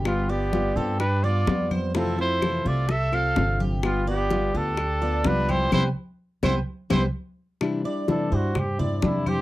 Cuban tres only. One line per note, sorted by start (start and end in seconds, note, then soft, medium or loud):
0.00 0.28 G4 medium
0.29 0.75 D5 medium
0.77 1.22 G4 medium
1.24 1.69 D5 medium
1.71 1.94 C5 medium
1.94 2.40 E4 medium
2.42 2.65 A4 medium
2.66 3.11 E5 medium
3.13 3.59 A4 medium
3.60 4.06 G4 medium
4.07 4.53 D5 medium
4.55 5.00 G4 medium
5.02 5.47 D5 medium
5.49 5.71 G4 medium
5.72 5.87 G4 medium
5.72 5.87 B4 medium
5.72 5.87 C5 medium
6.43 6.58 G4 medium
6.43 6.58 B4 medium
6.43 6.58 C5 medium
6.90 7.05 G4 medium
6.90 7.05 B4 medium
6.90 7.05 C5 medium
7.85 8.31 D5 medium
8.32 8.78 C5 medium
8.79 9.25 D5 medium
9.27 9.41 C5 medium